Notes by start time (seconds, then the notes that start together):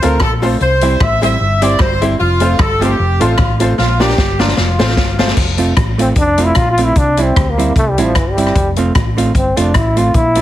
0.02 D2 A3 C4 F4 A4 A#4 C5, closed hi-hat
0.20 A#1 A4, kick, cross-stick
0.42 A3 C4 F4 A4 C5, open hi-hat
0.60 C2 C5, hi-hat pedal
0.81 G3 C4 E4 G4 C5, closed hi-hat
1.00 A1 E5, kick, cross-stick
1.21 G3 C4 E4 G4 C5 E5, closed hi-hat
1.41 G1
1.62 G3 C4 E4 G4 C5 D5, closed hi-hat
1.79 G1 C5, kick, cross-stick
2.01 G3 C4 E4 G4 C5, closed hi-hat
2.20 F1 F4
2.40 A3 C4 F4 A4 C5, closed hi-hat
2.59 G1 A4, kick, cross-stick
2.81 A3 C4 F4 G4 A4 C5, closed hi-hat
2.99 F1
3.20 A1 A3 C4 F4 A4 C5, closed hi-hat
3.38 A1, kick, cross-stick
3.60 A3 C4 F4 A4 C5, closed hi-hat
3.78 A#1 F4, snare
4.00 A#3 D4 F4 G4 A#4 D5, snare
4.09 snare
4.18 G1, kick, snare
4.39 A#3 D4 F4 A#4 D5, snare
4.48 snare
4.57 F1, snare
4.79 A1 A3 C4 F4 A4 C5, snare
4.88 snare
4.97 G1, kick, snare
5.18 A3 C4 F4 A4 C5, snare
5.28 snare
5.37 F1, kick, crash
5.58 A3 C4 F4, closed hi-hat
5.76 A1, kick, cross-stick, closed hi-hat
5.98 A3 C4 F4, closed hi-hat
6.16 F1 D4, kick, closed hi-hat
6.38 A3 C4 F4, closed hi-hat
6.45 E4
6.55 A#1 F4, kick, cross-stick, closed hi-hat
6.71 F4
6.77 A3 C4 F4, closed hi-hat
6.85 E4
6.95 C2 D4, kick, closed hi-hat
7.17 G3 C4 E4, closed hi-hat
7.24 C4
7.36 D2, kick, cross-stick, closed hi-hat
7.50 A#3
7.58 G3 C4 E4, closed hi-hat
7.76 C2 A3, kick, closed hi-hat
7.90 G3
7.98 A1 G3 C4 E4, closed hi-hat
8.03 F3
8.15 G1 E3, kick, cross-stick, closed hi-hat
8.30 G3
8.37 G3 C4 E4, closed hi-hat
8.47 cross-stick
8.55 F1, kick, closed hi-hat
8.76 A3 C4 F4, closed hi-hat
8.95 A1, kick, cross-stick, closed hi-hat
9.17 A3 C4 F4, closed hi-hat
9.35 G1 C4, kick, closed hi-hat
9.57 F1 A3 C4 D4 F4, closed hi-hat
9.74 A1 E4, kick, cross-stick, closed hi-hat
9.96 A3 C4 F4, closed hi-hat
10.14 A#1 E4, kick, closed hi-hat
10.35 A#3 D4 F4, closed hi-hat